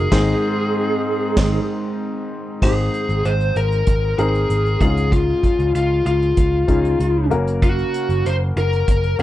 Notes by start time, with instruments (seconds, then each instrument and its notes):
Already playing: upright piano A#3 D#4 F#4 A#4, steel-string acoustic guitar D#4 F#4 A#4, lead electric guitar G#4
0.11 picked electric bass G#1, steel-string acoustic guitar G#2 D#3 G#3 C4 D#4 C5, upright piano G#2 D#3 C4 D#4 G#4 C5, analog synth pad G#3 C4 D#4, kick, snare, crash
1.36 picked electric bass G#1, steel-string acoustic guitar G#2 D#3 G#3 C4 D#4 C5, kick, snare, crash
2.62 picked electric bass G#1, upright piano G#2 D#3 C4 D#4 G#4 C5, lead electric guitar G#4, kick, crash
2.94 closed hi-hat
3.09 picked electric bass G#1, closed hi-hat
3.25 picked electric bass G#1, lead electric guitar C5, closed hi-hat
3.40 closed hi-hat
3.56 picked electric bass G#1, lead electric guitar A#4, closed hi-hat
3.72 closed hi-hat
3.87 picked electric bass G#1, kick, closed hi-hat
4.18 picked electric bass G#1, upright piano C4 D#4 G#4 A#4, lead electric guitar G#4, closed hi-hat
4.35 closed hi-hat
4.50 picked electric bass G#1, closed hi-hat
4.66 closed hi-hat
4.80 picked electric bass C#2, upright piano G#2 C#4 D#4 F4 G#4, lead electric guitar G#4, kick, closed hi-hat
4.97 closed hi-hat
5.12 lead electric guitar F4, kick, closed hi-hat
5.43 kick, closed hi-hat
5.59 picked electric bass C#2, closed hi-hat
5.74 picked electric bass C#2, lead electric guitar F4, closed hi-hat
6.06 picked electric bass C#2, lead electric guitar F4, closed hi-hat
6.22 closed hi-hat
6.37 picked electric bass C#2, kick, closed hi-hat
6.68 picked electric bass C#2, upright piano C#4 D#4 F4 G#4, kick, closed hi-hat
6.85 closed hi-hat
7.00 picked electric bass C#2, closed hi-hat
7.30 picked electric bass F#1, upright piano C#3 A#3 C#4 F#4 A#4, closed hi-hat
7.47 closed hi-hat
7.62 lead electric guitar F#4, kick, closed hi-hat
7.78 closed hi-hat
7.94 closed hi-hat
8.09 picked electric bass F#1, closed hi-hat
8.25 picked electric bass F#1, lead electric guitar C5, closed hi-hat
8.56 picked electric bass F#1, lead electric guitar A#4, closed hi-hat
8.73 closed hi-hat
8.88 picked electric bass F#1, kick, closed hi-hat
9.03 closed hi-hat
9.19 picked electric bass F#1, upright piano A#3 C#4 F#4 A#4, closed hi-hat